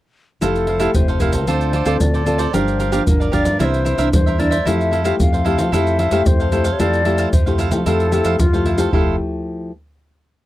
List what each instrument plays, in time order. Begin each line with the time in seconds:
0.41 fingered electric bass F1, nylon-string guitar F3 A3 E4 G4, cavaquinho E4 A4 C5 F5, flute A4, pandeiro, maracas, surdo
0.56 pandeiro, maracas
0.67 cavaquinho E4 A4 C5 F5, pandeiro
0.79 nylon-string guitar A3 E4 G4, cavaquinho E4 A4 C5 F5, pandeiro, maracas
0.94 fingered electric bass F1, nylon-string guitar C3, flute C5, pandeiro, maracas, surdo
1.08 cavaquinho A4 C5 F5, pandeiro, maracas
1.20 nylon-string guitar A3 E4 G4, cavaquinho E4 A4 C5 F5, flute A#4, pandeiro, maracas, surdo
1.32 fingered electric bass C#2, cavaquinho A4 C5 F5, pandeiro, maracas
1.47 fingered electric bass D2, nylon-string guitar D3 C4 F4 A4, cavaquinho F4 A4 C5 D5, flute C5, pandeiro, maracas, surdo
1.61 pandeiro, maracas
1.73 cavaquinho F4 A4 C5 D5, pandeiro
1.85 fingered electric bass D2, nylon-string guitar C4 F4 A4, cavaquinho F4 A4 C5 D5, pandeiro, maracas
2.00 fingered electric bass D2, nylon-string guitar A2, flute D5, pandeiro, maracas, surdo
2.14 cavaquinho A4 C5 D5, pandeiro, maracas
2.26 nylon-string guitar C4 F4 A4, cavaquinho F4 A4 C5 D5, pandeiro, maracas
2.38 cavaquinho A4 C5 D5, pandeiro, maracas
2.53 fingered electric bass G1, nylon-string guitar G2 F3 A#3 D4, cavaquinho G4 A#4 D5 F5, flute C5, pandeiro, maracas, surdo
2.68 pandeiro, maracas
2.79 cavaquinho G4 A#4 D5 F5, pandeiro, maracas
2.92 nylon-string guitar F3 A#3 D4, cavaquinho G4 A#4 D5 F5, pandeiro, maracas
3.07 fingered electric bass G1, nylon-string guitar D3, flute A#4, pandeiro, maracas, surdo
3.20 cavaquinho A#4 D5 F5, pandeiro, maracas
3.32 nylon-string guitar F3 A#3 D4, cavaquinho G4 A#4 D5 F5, flute D5, pandeiro, surdo
3.44 fingered electric bass G2, cavaquinho A#4 D5 F5, pandeiro, maracas
3.59 fingered electric bass C2, nylon-string guitar C3 E3 A#3 D4, cavaquinho E4 A#4 C5 E5, flute D5, pandeiro, maracas, surdo
3.65 flute C5
3.74 pandeiro, maracas
3.85 cavaquinho E4 A#4 C5 E5, pandeiro, maracas
3.98 fingered electric bass C2, nylon-string guitar E3 A#3 D4, cavaquinho E4 A#4 C5 E5, pandeiro, maracas
4.13 fingered electric bass E2, nylon-string guitar G2, flute C5, pandeiro, maracas, surdo
4.26 cavaquinho A#4 C5 E5, pandeiro, maracas
4.38 nylon-string guitar E3 A#3 D4, cavaquinho E4 A#4 C5 E5, flute D5, pandeiro
4.51 cavaquinho A#4 C5 E5, pandeiro, maracas
4.65 fingered electric bass F2, nylon-string guitar F3 A3 E4 G4, cavaquinho E4 A4 C5 F5, flute E5, pandeiro, maracas, surdo
4.81 pandeiro, maracas
4.91 cavaquinho E4 A4 C5 F5, pandeiro
5.04 nylon-string guitar A3 E4 G4, cavaquinho E4 A4 C5 F5, pandeiro, maracas
5.19 fingered electric bass F2, nylon-string guitar C3, flute F5, pandeiro, maracas, surdo
5.33 cavaquinho A4 C5 F5, pandeiro, maracas
5.44 nylon-string guitar A3 E4 G4, cavaquinho E4 A4 C5 F5, pandeiro
5.58 fingered electric bass F3, cavaquinho A4 C5 F5, pandeiro, maracas
5.72 fingered electric bass F2, nylon-string guitar F3 A3 E4 G4, cavaquinho E4 A4 C5 F5, flute E5, pandeiro, maracas, surdo
5.87 pandeiro, maracas
5.99 cavaquinho E4 A4 C5 F5, pandeiro
6.11 fingered electric bass F2, nylon-string guitar A3 E4 G4, cavaquinho E4 A4 C5 F5, pandeiro, maracas
6.26 fingered electric bass F2, nylon-string guitar C3, flute C5, pandeiro, maracas, surdo
6.40 cavaquinho A4 C5 F5, pandeiro, maracas
6.52 nylon-string guitar A3 E4 G4, cavaquinho E4 A4 C5 F5, pandeiro, maracas
6.64 cavaquinho A4 C5 F5, pandeiro, maracas
6.73 flute C#5
6.79 fingered electric bass F2, nylon-string guitar F3 A3 E4 G4, cavaquinho E4 A4 C5 F5, flute D5, pandeiro, maracas, surdo
6.93 pandeiro, maracas
7.05 nylon-string guitar A3 E4 G4, cavaquinho E4 A4 C5 F5, pandeiro
7.18 cavaquinho E4 A4 C5 F5, pandeiro, maracas
7.33 fingered electric bass F2, nylon-string guitar C3, flute C5, pandeiro, maracas, surdo
7.46 nylon-string guitar A3 E4 G4, cavaquinho A4 C5 F5, pandeiro, maracas
7.58 cavaquinho E4 A4 C5 F5, pandeiro, maracas
7.71 fingered electric bass F3, nylon-string guitar A3 E4 G4, cavaquinho A4 C5 F5, pandeiro, maracas
7.86 fingered electric bass F2, nylon-string guitar F3 A3 E4 G4, cavaquinho E4 A4 C5 F5, flute A4, pandeiro, maracas, surdo
8.00 pandeiro, maracas
8.11 nylon-string guitar A3 E4 G4, cavaquinho E4 A4 C5 F5, pandeiro, maracas
8.25 fingered electric bass F2, cavaquinho E4 A4 C5 F5, pandeiro, maracas
8.39 fingered electric bass F2, nylon-string guitar C3, flute F4, pandeiro, maracas, surdo
8.53 nylon-string guitar A3 E4 G4, cavaquinho A4 C5 F5, pandeiro, maracas
8.65 cavaquinho E4 A4 C5 F5, pandeiro
8.77 nylon-string guitar A3 E4 G4, cavaquinho A4 C5 F5, pandeiro, maracas
8.92 fingered electric bass F1, nylon-string guitar F3 A3 E4 G4, cavaquinho E4 A4 C5 F5, flute A4, surdo